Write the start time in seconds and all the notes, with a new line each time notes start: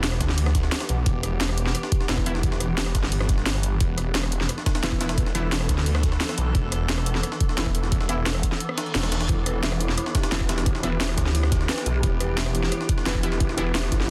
Already playing: E1 E3 B3 G4
0.03 snare, closed hi-hat
0.12 cross-stick
0.21 D2, kick, snare, closed hi-hat
0.29 snare
0.38 closed hi-hat, open hi-hat
0.46 cross-stick, snare
0.55 kick, snare, closed hi-hat
0.63 snare
0.72 snare, closed hi-hat
0.80 cross-stick, snare, closed hi-hat
0.89 B1, closed hi-hat
1.06 E1, kick, closed hi-hat
1.23 E1, cross-stick, closed hi-hat
1.40 snare, closed hi-hat
1.49 cross-stick, closed hi-hat
1.58 closed hi-hat
1.66 snare
1.75 cross-stick, closed hi-hat
1.83 snare
1.92 kick, closed hi-hat
2.00 snare
2.09 E1 E3 B3 E4, snare, closed hi-hat
2.18 kick, cross-stick
2.26 E3 B3 E4, closed hi-hat
2.35 snare
2.43 kick, closed hi-hat
2.52 snare
2.60 cross-stick, closed hi-hat
2.78 snare, closed hi-hat
2.86 cross-stick
2.95 G1, kick, snare, closed hi-hat
3.03 snare
3.12 closed hi-hat, open hi-hat
3.20 cross-stick, snare
3.29 kick, snare, closed hi-hat
3.38 snare
3.46 snare, closed hi-hat
3.55 cross-stick
3.63 closed hi-hat
3.80 E1 A4, kick, closed hi-hat
3.98 E1, cross-stick, closed hi-hat
4.15 snare, closed hi-hat
4.23 cross-stick, closed hi-hat
4.32 closed hi-hat
4.41 snare
4.49 cross-stick, closed hi-hat
4.58 snare
4.66 kick, snare, closed hi-hat
4.75 snare, closed hi-hat
4.83 E1 E3 B3 E4, snare, closed hi-hat
4.92 kick, cross-stick
5.01 E3 B3 E4, snare, closed hi-hat
5.09 snare, closed hi-hat
5.18 kick, closed hi-hat
5.26 snare
5.35 E3 B3 E4, cross-stick, closed hi-hat
5.52 snare, closed hi-hat
5.61 cross-stick
5.69 D2, kick, snare, closed hi-hat
5.78 snare
5.86 closed hi-hat, open hi-hat
5.95 cross-stick, snare
6.03 kick, snare, closed hi-hat
6.12 snare
6.20 snare, closed hi-hat
6.29 cross-stick, snare, closed hi-hat
6.38 B1, closed hi-hat
6.55 E1, kick, closed hi-hat
6.72 E1, cross-stick, closed hi-hat
6.89 snare, closed hi-hat
6.98 cross-stick, closed hi-hat
7.06 closed hi-hat
7.15 snare
7.23 cross-stick, closed hi-hat
7.32 snare
7.40 kick, closed hi-hat
7.49 snare
7.58 E1 E3 B3 E4, snare, closed hi-hat
7.66 kick, cross-stick
7.75 closed hi-hat
7.83 snare
7.92 kick, closed hi-hat
8.01 snare
8.09 E3 B3 E4, cross-stick, closed hi-hat
8.26 snare, closed hi-hat
8.35 cross-stick
8.43 kick, closed hi-hat
8.52 snare
8.60 closed hi-hat, reverse cymbal
8.69 cross-stick
8.78 snare, closed hi-hat
8.86 closed hi-hat
8.95 E1, snare, closed hi-hat
9.03 cross-stick, snare, closed hi-hat
9.12 snare, closed hi-hat
9.21 snare, closed hi-hat
9.29 E1 E4 G4, kick, closed hi-hat
9.46 E1 B4, cross-stick, closed hi-hat
9.63 E5, snare, closed hi-hat
9.72 cross-stick, closed hi-hat
9.80 E4, closed hi-hat
9.89 snare
9.98 E4, cross-stick, closed hi-hat
10.06 snare
10.15 G4, kick, snare, closed hi-hat
10.23 snare, closed hi-hat
10.32 E1 E3 B3 E4 B4, snare, closed hi-hat
10.41 kick, cross-stick
10.49 E3 B3 E4 G4, snare, closed hi-hat
10.58 snare, closed hi-hat
10.66 E4, kick, closed hi-hat
10.75 snare
10.83 E3 B3 E4 B4, cross-stick, closed hi-hat
11.00 E5, snare, closed hi-hat
11.09 cross-stick
11.18 D2 E4, kick, snare, closed hi-hat
11.26 snare
11.35 E4, closed hi-hat, open hi-hat
11.43 cross-stick, snare
11.52 G4, kick, snare, closed hi-hat
11.61 snare
11.69 B4, snare, closed hi-hat
11.78 cross-stick, snare, closed hi-hat
11.86 B1 G4, closed hi-hat
12.03 E1 E4, kick, closed hi-hat
12.20 E1 B4, cross-stick, closed hi-hat
12.38 E5, snare, closed hi-hat
12.46 cross-stick, closed hi-hat
12.55 E4, closed hi-hat
12.63 snare
12.72 E4, cross-stick, closed hi-hat
12.81 snare
12.89 G4, kick, closed hi-hat
12.98 snare
13.06 E1 E3 B3 E4 B4, snare, closed hi-hat
13.15 kick, cross-stick
13.23 E3 B3 E4 G4, closed hi-hat
13.32 snare
13.40 E4, kick, closed hi-hat
13.49 snare
13.58 E3 B3 E4 B4, cross-stick, closed hi-hat
13.75 E5, snare, closed hi-hat
13.83 cross-stick
13.92 G1 E4, kick, snare, closed hi-hat
14.00 snare